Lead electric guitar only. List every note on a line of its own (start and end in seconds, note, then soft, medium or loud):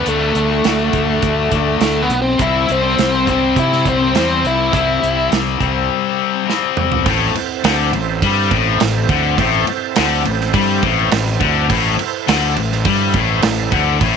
0.08 1.80 A3 medium
1.82 2.02 A3 medium
2.02 2.21 B3 medium
2.22 2.41 C4 medium
2.41 2.71 E4 medium
2.72 3.29 C4 medium
3.30 3.59 C4 medium
3.59 3.88 E4 medium
3.87 4.47 C4 medium
4.47 5.29 E4 medium